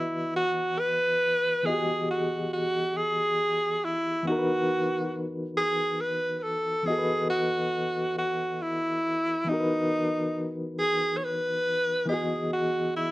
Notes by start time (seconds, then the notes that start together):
Already playing: E3 B3 E4 F#4 B4 D#5
0.36 F#4
0.79 B4
1.63 E3 B3 G#4 D#5
1.69 F#4 G4
1.79 G#4
2.11 F#4
2.53 F#4
2.97 G#4
3.84 E4
4.23 E3 B3
4.27 D#4 F#4
4.32 A#4
4.38 B4
5.57 G#4
6.01 B4
6.39 B4
6.43 A4
6.83 E3 B3 G#4
6.88 F#4 D#5
6.92 A4
6.98 B4
7.30 F#4
8.18 F#4
8.62 E4
9.44 E3 B3
9.49 D#4 F#4
9.53 A#4
9.60 B4
10.79 G#4
11.17 C#5
11.24 B4
12.06 E3 B3 G#4
12.10 F#4 D#5
12.14 G#4
12.53 F#4
12.96 E4